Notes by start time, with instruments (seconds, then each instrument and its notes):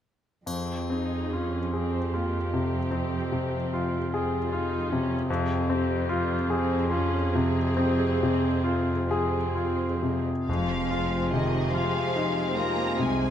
0.46 grand piano F2, cello section F2, viola section C4 G#4, triangle
0.90 grand piano C4, viola section D#4
1.33 viola section C#4, grand piano F4
1.73 viola section C4 G4, grand piano G#4
2.14 viola section A#3, grand piano F4
2.54 grand piano C3, viola section C4
2.91 grand piano C4
3.32 grand piano C3
3.74 grand piano F4
4.12 viola section C4 F4, grand piano G#4
4.51 viola section D#4, grand piano F4
4.90 grand piano C3, viola section C#4
5.29 cello section F2, grand piano F2, viola section C4 G#4
5.69 grand piano C4, viola section G4
6.09 grand piano F4, viola section F4
6.50 viola section C4 G#4, grand piano G#4
6.91 viola section C#4, grand piano F4
7.32 grand piano C3, viola section C4
7.77 grand piano C4
8.23 grand piano C3
8.64 grand piano F4
9.09 viola section C4 G#4, grand piano G#4
9.55 grand piano F4
10.03 grand piano C3
10.47 double bass section F1, timpani F2, grand piano F2, viola section F3 C4, cello section F3, violin section G#3 G#4 F5, french horn section G#3 C4
10.70 violin section C4
10.90 violin section F4, grand piano F4
11.11 violin section C4
11.32 grand piano C3, cello section D#3, violin section G#3 D#5
11.52 violin section C4
11.73 cello section F3, violin section F4 F5, grand piano F4
11.96 violin section C4
12.16 violin section G#3, grand piano D#4
12.39 violin section C4
12.57 cello section A#3, grand piano F4, violin section F4 A#5
12.80 violin section C4
12.99 double bass section C2, grand piano C3, cello section G#3, violin section G#3 G#5
13.22 violin section C4